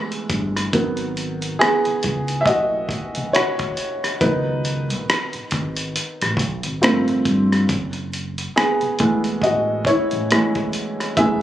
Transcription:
Already playing: upright piano E3 G#3 A3 B3
0.12 closed hi-hat
0.30 fingered electric bass G1, kick, closed hi-hat
0.57 cross-stick, closed hi-hat
0.73 fingered electric bass G#1, upright piano D#3 F#3 B3, kick, closed hi-hat
0.97 closed hi-hat
1.17 closed hi-hat
1.42 closed hi-hat
1.59 upright piano B3 G#4, cross-stick, closed hi-hat
1.85 muted fingered electric bass stroke, closed hi-hat
2.03 fingered electric bass C#2, kick, closed hi-hat
2.28 closed hi-hat
2.41 upright piano E5
2.46 fingered electric bass B1, upright piano F#4 D#5, kick, closed hi-hat
2.89 kick, closed hi-hat
3.15 fingered electric bass B1, closed hi-hat
3.33 upright piano F#4 C#5, cross-stick, closed hi-hat
3.59 kick, closed hi-hat
3.77 closed hi-hat
4.04 cross-stick, closed hi-hat
4.21 fingered electric bass C#2, upright piano D#3 F#3 B3 D#4 B4, kick, closed hi-hat
4.65 closed hi-hat
4.90 closed hi-hat
5.10 cross-stick, closed hi-hat
5.33 muted fingered electric bass stroke, closed hi-hat
5.51 fingered electric bass G#1, kick, closed hi-hat
5.77 closed hi-hat
5.96 closed hi-hat
6.22 fingered electric bass A1, cross-stick, closed hi-hat
6.37 fingered electric bass B1, kick, closed hi-hat
6.63 fingered electric bass G#1, closed hi-hat
6.82 fingered electric bass G1, upright piano F3 A3 A#3 C4, cross-stick, closed hi-hat
7.08 fingered electric bass G1, closed hi-hat
7.25 fingered electric bass G2, kick, closed hi-hat
7.52 cross-stick, closed hi-hat
7.69 fingered electric bass F#1, kick, closed hi-hat
7.93 closed hi-hat
8.13 closed hi-hat
8.38 closed hi-hat
8.56 upright piano B3 G#4, cross-stick, closed hi-hat
8.81 muted fingered electric bass stroke, closed hi-hat
8.99 fingered electric bass B1, upright piano E3 G#3 A3 B3, kick, closed hi-hat
9.24 closed hi-hat
9.42 fingered electric bass A1, upright piano F#4 D#5, kick, closed hi-hat
9.85 upright piano E4 C#5, kick, closed hi-hat
10.11 fingered electric bass A1, closed hi-hat
10.31 upright piano E3 G#3 A3 B3, cross-stick, closed hi-hat
10.55 kick, closed hi-hat
10.73 closed hi-hat
11.00 cross-stick, closed hi-hat
11.17 fingered electric bass F#1, upright piano E3 G#3 A3 B3 G#4 E5, kick, closed hi-hat

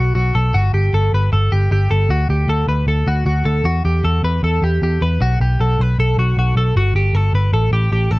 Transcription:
Already playing: picked electric bass B1, clean electric guitar F#4
0.15 picked electric bass B1, clean electric guitar F#4
0.35 picked electric bass B1, clean electric guitar A4
0.54 picked electric bass G1, clean electric guitar F#4
0.73 picked electric bass G1, clean electric guitar G4
0.93 picked electric bass G1, clean electric guitar A4
1.13 picked electric bass G1, clean electric guitar B4
1.33 picked electric bass G1, clean electric guitar A4
1.52 picked electric bass G1, clean electric guitar G4
1.71 picked electric bass G1, clean electric guitar G4
1.90 picked electric bass G1, clean electric guitar A4
2.09 picked electric bass D2, clean electric guitar F#4
2.29 picked electric bass D2, clean electric guitar G4
2.48 picked electric bass D2, clean electric guitar A4
2.68 picked electric bass D2, clean electric guitar B4
2.87 picked electric bass D2, clean electric guitar A4
3.07 picked electric bass D2, clean electric guitar F#4
3.26 picked electric bass D2, clean electric guitar F#4
3.45 picked electric bass D2, clean electric guitar A4
3.64 picked electric bass E2, clean electric guitar F#4
3.85 picked electric bass E2, clean electric guitar G4
4.04 picked electric bass E2, clean electric guitar A4
4.23 picked electric bass E2, clean electric guitar B4
4.43 picked electric bass E2, clean electric guitar A4
4.62 picked electric bass E2, clean electric guitar G4
4.82 picked electric bass E2, clean electric guitar G4
5.01 picked electric bass E2, clean electric guitar B4
5.21 picked electric bass B1, clean electric guitar F#4
5.40 picked electric bass B1, clean electric guitar G4
5.60 picked electric bass B1, clean electric guitar A4
5.79 picked electric bass B1, clean electric guitar B4
5.99 picked electric bass B1, clean electric guitar A4
6.17 picked electric bass B1, clean electric guitar F#4
6.37 picked electric bass B1, clean electric guitar F#4
6.56 picked electric bass B1, clean electric guitar A4
6.76 picked electric bass G1, clean electric guitar F#4
6.94 picked electric bass G1, clean electric guitar G4
7.13 picked electric bass G1, clean electric guitar A4
7.33 picked electric bass G1, clean electric guitar B4
7.53 picked electric bass A1, clean electric guitar A4
7.71 picked electric bass A1, clean electric guitar G4
7.92 picked electric bass A1, clean electric guitar G4
8.11 picked electric bass A1, clean electric guitar A4

